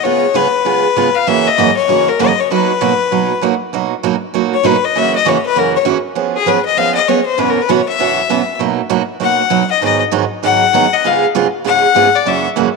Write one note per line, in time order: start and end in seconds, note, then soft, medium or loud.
0.03 0.25 C#3 medium
0.03 0.25 G#3 soft
0.03 0.25 B3 medium
0.03 0.25 F4 medium
0.03 0.25 G#4 medium
0.03 0.37 C#5 loud
0.34 0.46 C#3 medium
0.34 0.46 G#3 medium
0.34 0.46 B3 medium
0.34 0.47 F4 medium
0.34 0.47 G#4 medium
0.34 1.16 B4 medium
0.65 0.86 C#3 medium
0.65 0.86 G#3 medium
0.65 0.86 B3 medium
0.65 0.86 F4 medium
0.65 0.87 G#4 medium
0.96 1.08 C#3 medium
0.96 1.08 G#3 medium
0.96 1.08 B3 medium
0.96 1.08 F4 medium
0.96 1.08 G#4 medium
1.15 1.29 F5 medium
1.27 1.48 F#2 medium
1.27 1.48 C#3 medium
1.27 1.48 E3 medium
1.27 1.48 A#3 medium
1.27 1.48 C#4 medium
1.27 1.48 F#4 medium
1.27 1.49 E5 medium
1.47 1.76 D#5 loud
1.58 1.69 F#2 medium
1.58 1.69 C#3 medium
1.58 1.70 E3 medium
1.58 1.69 A#3 medium
1.58 1.70 C#4 medium
1.58 1.70 F#4 medium
1.76 2.10 C#5 medium
1.88 2.09 F#2 medium
1.88 2.09 C#3 soft
1.88 2.09 E3 medium
1.88 2.09 A#3 medium
1.88 2.09 C#4 medium
1.88 2.10 F#4 medium
2.09 2.21 A#4 medium
2.19 2.31 F#2 medium
2.19 2.31 C#3 medium
2.19 2.31 E3 medium
2.19 2.31 A#3 medium
2.19 2.31 C#4 medium
2.19 2.31 F#4 medium
2.19 2.41 D#5 medium
2.40 2.51 C#5 medium
2.51 2.71 B2 medium
2.51 2.71 F#3 medium
2.51 2.71 A#3 medium
2.51 2.71 D#4 medium
2.51 2.71 F#4 medium
2.51 3.39 B4 medium
2.81 2.92 B2 medium
2.81 2.92 F#3 medium
2.81 2.92 A#3 medium
2.81 2.92 D#4 medium
2.81 2.93 F#4 medium
3.11 3.32 B2 medium
3.11 3.32 F#3 medium
3.11 3.32 A#3 medium
3.11 3.32 D#4 medium
3.11 3.32 F#4 medium
3.41 3.53 B2 medium
3.41 3.53 F#3 medium
3.41 3.54 A#3 medium
3.41 3.54 D#4 medium
3.41 3.54 F#4 medium
3.73 3.93 B2 medium
3.73 3.93 F#3 medium
3.73 3.93 A#3 medium
3.73 3.94 D#4 medium
3.73 3.94 F#4 medium
4.03 4.14 B2 medium
4.03 4.15 F#3 medium
4.03 4.14 A#3 medium
4.03 4.15 D#4 medium
4.03 4.15 F#4 medium
4.34 4.54 B2 medium
4.34 4.54 F#3 medium
4.34 4.54 A#3 medium
4.34 4.54 D#4 medium
4.34 4.55 F#4 medium
4.54 4.67 C#5 medium
4.63 4.75 B2 medium
4.63 4.75 F#3 medium
4.63 4.76 A#3 medium
4.63 4.76 D#4 medium
4.63 4.76 F#4 medium
4.63 4.86 B4 medium
4.84 4.99 D#5 medium
4.95 5.15 F#2 medium
4.95 5.15 C#3 medium
4.95 5.16 E3 medium
4.95 5.16 A#3 medium
4.95 5.16 C#4 medium
4.95 5.16 F#4 medium
4.95 5.15 E5 medium
5.16 5.30 D#5 medium
5.25 5.36 F#2 medium
5.25 5.37 C#3 medium
5.25 5.37 E3 medium
5.25 5.37 A#3 medium
5.25 5.37 C#4 medium
5.25 5.37 F#4 medium
5.25 5.46 C#5 medium
5.47 5.60 B4 medium
5.56 5.76 F#2 medium
5.56 5.76 C#3 medium
5.56 5.76 E3 medium
5.56 5.76 A#3 medium
5.56 5.76 C#4 medium
5.56 5.76 F#4 medium
5.56 5.75 A#4 medium
5.76 5.82 C#5 medium
5.85 5.97 F#2 medium
5.85 5.97 C#3 medium
5.85 5.97 E3 medium
5.85 5.97 A#3 medium
5.85 5.97 C#4 medium
5.85 5.97 F#4 medium
6.15 6.36 F3 medium
6.15 6.36 B3 medium
6.15 6.37 C#4 medium
6.15 6.37 G#4 medium
6.36 6.49 G#4 medium
6.46 6.58 F3 medium
6.46 6.58 B3 medium
6.46 6.58 C#4 medium
6.46 6.59 G#4 medium
6.46 6.65 B4 medium
6.65 6.79 D#5 loud
6.77 6.97 F3 medium
6.77 6.98 B3 medium
6.77 6.98 C#4 medium
6.77 6.98 G#4 medium
6.77 6.94 F5 loud
6.95 7.09 D#5 medium
7.08 7.19 F3 medium
7.08 7.19 B3 medium
7.08 7.20 C#4 medium
7.08 7.20 G#4 medium
7.08 7.25 C#5 medium
7.26 7.41 C5 medium
7.37 7.58 F#2 medium
7.37 7.58 B2 medium
7.37 7.58 E3 medium
7.37 7.59 B3 medium
7.37 7.59 C#4 medium
7.37 7.59 F#4 medium
7.37 7.51 B4 medium
7.50 7.63 A#4 medium
7.62 7.72 B4 medium
7.69 7.80 F#2 medium
7.69 7.80 B2 medium
7.69 7.80 E3 medium
7.69 7.80 B3 medium
7.69 7.80 C#4 medium
7.69 7.81 F#4 medium
7.69 7.88 C#5 medium
7.89 8.57 E5 loud
7.99 8.19 F#2 medium
7.99 8.20 B2 medium
7.99 8.20 E3 medium
7.99 8.20 B3 medium
7.99 8.20 C#4 medium
7.99 8.20 F#4 medium
8.30 8.41 F#2 medium
8.30 8.41 B2 medium
8.30 8.41 E3 medium
8.30 8.41 B3 medium
8.30 8.41 C#4 medium
8.30 8.41 F#4 medium
8.59 8.80 B2 medium
8.59 8.80 F#3 medium
8.59 8.80 A#3 medium
8.59 8.80 D#4 medium
8.59 8.81 F#4 medium
8.89 9.01 B2 medium
8.89 9.01 F#3 medium
8.89 9.01 A#3 medium
8.89 9.02 D#4 medium
8.89 9.02 F#4 medium
9.20 9.41 B2 medium
9.20 9.41 F#3 medium
9.20 9.41 A#3 medium
9.20 9.41 D#4 medium
9.20 9.41 F#4 medium
9.20 9.68 F#5 medium
9.50 9.62 B2 medium
9.50 9.62 F#3 medium
9.50 9.62 A#3 medium
9.50 9.62 D#4 medium
9.50 9.62 F#4 medium
9.71 9.82 D#5 medium
9.81 10.02 G#2 medium
9.81 10.02 D#3 medium
9.81 10.02 F#3 medium
9.81 10.02 B3 medium
9.81 10.03 D#4 medium
9.81 10.03 G#4 medium
9.81 10.01 D#5 medium
10.11 10.23 G#2 medium
10.11 10.23 D#3 medium
10.11 10.24 F#3 medium
10.11 10.24 B3 medium
10.11 10.24 D#4 medium
10.11 10.24 G#4 medium
10.43 10.63 G#2 medium
10.43 10.63 D#3 medium
10.43 10.63 F#3 medium
10.43 10.63 B3 medium
10.43 10.64 D#4 medium
10.43 10.64 G#4 medium
10.43 10.95 F#5 loud
10.73 10.85 G#2 medium
10.73 10.85 D#3 medium
10.73 10.85 F#3 medium
10.73 10.85 B3 medium
10.73 10.85 D#4 medium
10.73 10.85 G#4 medium
10.93 11.08 D#5 medium
11.04 11.24 G#2 medium
11.04 11.24 C#3 medium
11.04 11.25 G#3 medium
11.04 11.25 B3 medium
11.04 11.25 F4 medium
11.04 11.25 G#4 medium
11.04 11.24 F5 medium
11.35 11.46 G#2 medium
11.35 11.46 C#3 medium
11.35 11.46 G#3 medium
11.35 11.46 B3 medium
11.35 11.46 F4 medium
11.35 11.47 G#4 medium
11.64 11.85 G#2 medium
11.64 11.85 C#3 medium
11.64 11.85 G#3 medium
11.64 11.86 B3 medium
11.64 11.85 F4 medium
11.64 11.86 G#4 medium
11.64 12.17 F#5 loud
11.95 12.06 G#2 medium
11.95 12.07 C#3 medium
11.95 12.07 G#3 medium
11.95 12.07 B3 medium
11.95 12.07 F4 medium
11.95 12.07 G#4 medium
12.15 12.29 D5 medium
12.25 12.46 F#2 medium
12.25 12.46 C#3 medium
12.25 12.46 E3 medium
12.25 12.47 A#3 medium
12.25 12.47 C#4 medium
12.25 12.47 F#4 medium
12.25 12.46 E5 medium
12.56 12.67 F#2 medium
12.56 12.68 C#3 medium
12.56 12.68 E3 medium
12.56 12.68 A#3 medium
12.56 12.68 C#4 medium
12.56 12.68 F#4 medium